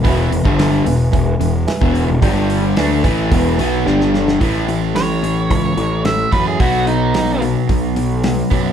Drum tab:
HH |o-o-o-o-o-o-o-o-|o-o-o-o-o-o-----|o-o-o-o-o-o-o-o-|o-o-o-o-o-o-o-o-|
SD |----o-------o---|----o-------oooo|----o-------o-o-|----o-------o---|
BD |o--o----o----o--|o-----o-o-------|o-------o-----o-|o-------o-----o-|